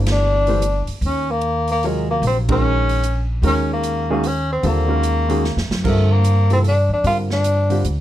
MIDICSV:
0, 0, Header, 1, 6, 480
1, 0, Start_track
1, 0, Tempo, 401606
1, 1226, Time_signature, 3, 2, 24, 8
1, 9568, End_track
2, 0, Start_track
2, 0, Title_t, "Grand piano"
2, 0, Program_c, 0, 0
2, 0, Note_on_c, 0, 52, 51
2, 0, Note_on_c, 0, 57, 46
2, 0, Note_on_c, 0, 62, 46
2, 0, Note_on_c, 0, 67, 48
2, 0, Note_on_c, 0, 72, 57
2, 514, Note_off_c, 0, 52, 0
2, 517, Note_off_c, 0, 57, 0
2, 519, Note_off_c, 0, 62, 0
2, 519, Note_off_c, 0, 67, 0
2, 521, Note_off_c, 0, 72, 0
2, 568, Note_on_c, 0, 52, 63
2, 579, Note_on_c, 0, 62, 63
2, 580, Note_on_c, 0, 57, 61
2, 586, Note_on_c, 0, 67, 60
2, 589, Note_on_c, 0, 72, 68
2, 726, Note_off_c, 0, 52, 0
2, 732, Note_off_c, 0, 57, 0
2, 732, Note_off_c, 0, 62, 0
2, 735, Note_off_c, 0, 67, 0
2, 736, Note_off_c, 0, 72, 0
2, 2199, Note_on_c, 0, 54, 54
2, 2200, Note_on_c, 0, 48, 51
2, 2204, Note_on_c, 0, 65, 52
2, 2205, Note_on_c, 0, 70, 54
2, 2211, Note_on_c, 0, 73, 66
2, 2917, Note_off_c, 0, 54, 0
2, 2918, Note_off_c, 0, 48, 0
2, 2920, Note_off_c, 0, 65, 0
2, 2921, Note_off_c, 0, 70, 0
2, 2924, Note_off_c, 0, 73, 0
2, 2970, Note_on_c, 0, 51, 65
2, 2976, Note_on_c, 0, 56, 63
2, 2979, Note_on_c, 0, 61, 61
2, 2985, Note_on_c, 0, 66, 62
2, 2994, Note_on_c, 0, 70, 75
2, 3590, Note_off_c, 0, 51, 0
2, 3593, Note_off_c, 0, 56, 0
2, 3594, Note_off_c, 0, 61, 0
2, 3597, Note_off_c, 0, 66, 0
2, 3602, Note_off_c, 0, 70, 0
2, 4102, Note_on_c, 0, 51, 62
2, 4109, Note_on_c, 0, 56, 58
2, 4111, Note_on_c, 0, 66, 56
2, 4113, Note_on_c, 0, 61, 58
2, 4122, Note_on_c, 0, 70, 71
2, 4829, Note_off_c, 0, 51, 0
2, 4833, Note_off_c, 0, 56, 0
2, 4834, Note_off_c, 0, 66, 0
2, 4835, Note_off_c, 0, 61, 0
2, 4839, Note_off_c, 0, 70, 0
2, 4904, Note_on_c, 0, 51, 73
2, 4905, Note_on_c, 0, 56, 67
2, 4911, Note_on_c, 0, 68, 76
2, 4913, Note_on_c, 0, 61, 69
2, 4914, Note_on_c, 0, 66, 65
2, 5054, Note_off_c, 0, 51, 0
2, 5054, Note_off_c, 0, 56, 0
2, 5058, Note_off_c, 0, 61, 0
2, 5058, Note_off_c, 0, 68, 0
2, 5059, Note_off_c, 0, 66, 0
2, 5531, Note_on_c, 0, 50, 60
2, 5535, Note_on_c, 0, 55, 54
2, 5539, Note_on_c, 0, 60, 53
2, 5550, Note_on_c, 0, 69, 65
2, 5551, Note_on_c, 0, 65, 56
2, 5815, Note_off_c, 0, 50, 0
2, 5817, Note_off_c, 0, 55, 0
2, 5819, Note_off_c, 0, 60, 0
2, 5824, Note_off_c, 0, 69, 0
2, 5825, Note_off_c, 0, 65, 0
2, 5828, Note_on_c, 0, 51, 61
2, 5834, Note_on_c, 0, 56, 55
2, 5841, Note_on_c, 0, 61, 53
2, 5845, Note_on_c, 0, 66, 52
2, 5854, Note_on_c, 0, 70, 61
2, 6259, Note_off_c, 0, 51, 0
2, 6262, Note_off_c, 0, 56, 0
2, 6266, Note_off_c, 0, 61, 0
2, 6268, Note_off_c, 0, 66, 0
2, 6272, Note_off_c, 0, 70, 0
2, 6315, Note_on_c, 0, 51, 66
2, 6322, Note_on_c, 0, 56, 58
2, 6333, Note_on_c, 0, 61, 59
2, 6333, Note_on_c, 0, 66, 61
2, 6341, Note_on_c, 0, 68, 71
2, 6480, Note_off_c, 0, 51, 0
2, 6483, Note_off_c, 0, 56, 0
2, 6489, Note_off_c, 0, 61, 0
2, 6489, Note_off_c, 0, 66, 0
2, 6493, Note_off_c, 0, 68, 0
2, 6976, Note_on_c, 0, 50, 57
2, 6978, Note_on_c, 0, 55, 52
2, 6984, Note_on_c, 0, 60, 54
2, 6985, Note_on_c, 0, 65, 49
2, 6988, Note_on_c, 0, 70, 66
2, 7707, Note_off_c, 0, 50, 0
2, 7708, Note_off_c, 0, 55, 0
2, 7711, Note_off_c, 0, 60, 0
2, 7712, Note_off_c, 0, 65, 0
2, 7713, Note_off_c, 0, 70, 0
2, 7767, Note_on_c, 0, 48, 58
2, 7773, Note_on_c, 0, 53, 51
2, 7776, Note_on_c, 0, 58, 51
2, 7786, Note_on_c, 0, 64, 56
2, 7788, Note_on_c, 0, 69, 62
2, 7927, Note_off_c, 0, 48, 0
2, 7930, Note_off_c, 0, 53, 0
2, 7931, Note_off_c, 0, 58, 0
2, 7936, Note_off_c, 0, 64, 0
2, 7937, Note_off_c, 0, 69, 0
2, 8422, Note_on_c, 0, 50, 48
2, 8424, Note_on_c, 0, 60, 43
2, 8426, Note_on_c, 0, 55, 48
2, 8430, Note_on_c, 0, 65, 46
2, 8435, Note_on_c, 0, 70, 50
2, 9151, Note_off_c, 0, 50, 0
2, 9152, Note_off_c, 0, 60, 0
2, 9153, Note_off_c, 0, 55, 0
2, 9155, Note_off_c, 0, 65, 0
2, 9157, Note_off_c, 0, 70, 0
2, 9200, Note_on_c, 0, 50, 65
2, 9207, Note_on_c, 0, 60, 54
2, 9208, Note_on_c, 0, 55, 55
2, 9214, Note_on_c, 0, 65, 54
2, 9222, Note_on_c, 0, 67, 67
2, 9363, Note_off_c, 0, 50, 0
2, 9367, Note_off_c, 0, 55, 0
2, 9367, Note_off_c, 0, 60, 0
2, 9370, Note_off_c, 0, 65, 0
2, 9375, Note_off_c, 0, 67, 0
2, 9568, End_track
3, 0, Start_track
3, 0, Title_t, "Tenor saxophone"
3, 0, Program_c, 1, 66
3, 145, Note_on_c, 1, 62, 91
3, 1031, Note_off_c, 1, 62, 0
3, 1263, Note_on_c, 1, 61, 78
3, 1562, Note_on_c, 1, 58, 85
3, 1580, Note_off_c, 1, 61, 0
3, 2027, Note_off_c, 1, 58, 0
3, 2048, Note_on_c, 1, 58, 78
3, 2224, Note_on_c, 1, 56, 76
3, 2242, Note_off_c, 1, 58, 0
3, 2512, Note_off_c, 1, 56, 0
3, 2519, Note_on_c, 1, 58, 78
3, 2667, Note_off_c, 1, 58, 0
3, 2712, Note_on_c, 1, 60, 78
3, 2839, Note_off_c, 1, 60, 0
3, 3013, Note_on_c, 1, 61, 98
3, 3905, Note_off_c, 1, 61, 0
3, 4148, Note_on_c, 1, 61, 88
3, 4414, Note_off_c, 1, 61, 0
3, 4458, Note_on_c, 1, 58, 89
3, 4884, Note_off_c, 1, 58, 0
3, 4932, Note_on_c, 1, 58, 80
3, 5106, Note_on_c, 1, 61, 82
3, 5123, Note_off_c, 1, 58, 0
3, 5393, Note_off_c, 1, 61, 0
3, 5407, Note_on_c, 1, 60, 77
3, 5575, Note_on_c, 1, 58, 92
3, 5593, Note_off_c, 1, 60, 0
3, 6828, Note_off_c, 1, 58, 0
3, 7018, Note_on_c, 1, 57, 84
3, 7308, Note_on_c, 1, 58, 95
3, 7326, Note_off_c, 1, 57, 0
3, 7781, Note_off_c, 1, 58, 0
3, 7807, Note_on_c, 1, 60, 78
3, 7878, Note_off_c, 1, 60, 0
3, 7980, Note_on_c, 1, 62, 93
3, 8250, Note_off_c, 1, 62, 0
3, 8284, Note_on_c, 1, 62, 80
3, 8431, Note_off_c, 1, 62, 0
3, 8445, Note_on_c, 1, 65, 91
3, 8580, Note_off_c, 1, 65, 0
3, 8758, Note_on_c, 1, 62, 91
3, 9355, Note_off_c, 1, 62, 0
3, 9568, End_track
4, 0, Start_track
4, 0, Title_t, "Upright bass"
4, 0, Program_c, 2, 32
4, 0, Note_on_c, 2, 31, 82
4, 999, Note_off_c, 2, 31, 0
4, 1209, Note_on_c, 2, 39, 75
4, 2609, Note_off_c, 2, 39, 0
4, 2650, Note_on_c, 2, 34, 79
4, 4050, Note_off_c, 2, 34, 0
4, 4087, Note_on_c, 2, 39, 76
4, 5489, Note_off_c, 2, 39, 0
4, 5538, Note_on_c, 2, 39, 82
4, 6615, Note_off_c, 2, 39, 0
4, 6650, Note_on_c, 2, 41, 53
4, 6806, Note_off_c, 2, 41, 0
4, 6813, Note_on_c, 2, 42, 63
4, 6968, Note_off_c, 2, 42, 0
4, 6979, Note_on_c, 2, 43, 77
4, 8203, Note_off_c, 2, 43, 0
4, 8234, Note_on_c, 2, 41, 67
4, 8402, Note_off_c, 2, 41, 0
4, 8409, Note_on_c, 2, 43, 73
4, 9331, Note_off_c, 2, 43, 0
4, 9373, Note_on_c, 2, 38, 68
4, 9568, Note_off_c, 2, 38, 0
4, 9568, End_track
5, 0, Start_track
5, 0, Title_t, "Muted upright bass strokes"
5, 1048, Note_on_c, 9, 29, 34
5, 1168, Note_off_c, 9, 29, 0
5, 9568, End_track
6, 0, Start_track
6, 0, Title_t, "Drums"
6, 77, Note_on_c, 9, 51, 62
6, 82, Note_on_c, 9, 38, 70
6, 197, Note_off_c, 9, 51, 0
6, 202, Note_off_c, 9, 38, 0
6, 559, Note_on_c, 9, 46, 34
6, 678, Note_off_c, 9, 46, 0
6, 740, Note_on_c, 9, 42, 50
6, 859, Note_off_c, 9, 42, 0
6, 1042, Note_on_c, 9, 46, 37
6, 1162, Note_off_c, 9, 46, 0
6, 1219, Note_on_c, 9, 46, 39
6, 1338, Note_off_c, 9, 46, 0
6, 1690, Note_on_c, 9, 42, 50
6, 1810, Note_off_c, 9, 42, 0
6, 2002, Note_on_c, 9, 46, 35
6, 2122, Note_off_c, 9, 46, 0
6, 2186, Note_on_c, 9, 46, 41
6, 2305, Note_off_c, 9, 46, 0
6, 2663, Note_on_c, 9, 46, 40
6, 2783, Note_off_c, 9, 46, 0
6, 2972, Note_on_c, 9, 51, 71
6, 2974, Note_on_c, 9, 36, 72
6, 3091, Note_off_c, 9, 51, 0
6, 3094, Note_off_c, 9, 36, 0
6, 3457, Note_on_c, 9, 46, 37
6, 3576, Note_off_c, 9, 46, 0
6, 3627, Note_on_c, 9, 42, 49
6, 3747, Note_off_c, 9, 42, 0
6, 4103, Note_on_c, 9, 46, 42
6, 4222, Note_off_c, 9, 46, 0
6, 4582, Note_on_c, 9, 42, 52
6, 4702, Note_off_c, 9, 42, 0
6, 5062, Note_on_c, 9, 46, 43
6, 5182, Note_off_c, 9, 46, 0
6, 5537, Note_on_c, 9, 46, 40
6, 5657, Note_off_c, 9, 46, 0
6, 6016, Note_on_c, 9, 42, 50
6, 6135, Note_off_c, 9, 42, 0
6, 6329, Note_on_c, 9, 46, 36
6, 6448, Note_off_c, 9, 46, 0
6, 6506, Note_on_c, 9, 38, 41
6, 6625, Note_off_c, 9, 38, 0
6, 6665, Note_on_c, 9, 38, 49
6, 6785, Note_off_c, 9, 38, 0
6, 6826, Note_on_c, 9, 38, 74
6, 6945, Note_off_c, 9, 38, 0
6, 6984, Note_on_c, 9, 36, 66
6, 6989, Note_on_c, 9, 49, 65
6, 7104, Note_off_c, 9, 36, 0
6, 7109, Note_off_c, 9, 49, 0
6, 7463, Note_on_c, 9, 42, 48
6, 7583, Note_off_c, 9, 42, 0
6, 7770, Note_on_c, 9, 46, 35
6, 7890, Note_off_c, 9, 46, 0
6, 7939, Note_on_c, 9, 46, 43
6, 8059, Note_off_c, 9, 46, 0
6, 8418, Note_on_c, 9, 46, 41
6, 8537, Note_off_c, 9, 46, 0
6, 8730, Note_on_c, 9, 38, 51
6, 8849, Note_off_c, 9, 38, 0
6, 8895, Note_on_c, 9, 42, 49
6, 9014, Note_off_c, 9, 42, 0
6, 9205, Note_on_c, 9, 46, 37
6, 9324, Note_off_c, 9, 46, 0
6, 9377, Note_on_c, 9, 42, 50
6, 9496, Note_off_c, 9, 42, 0
6, 9568, End_track
0, 0, End_of_file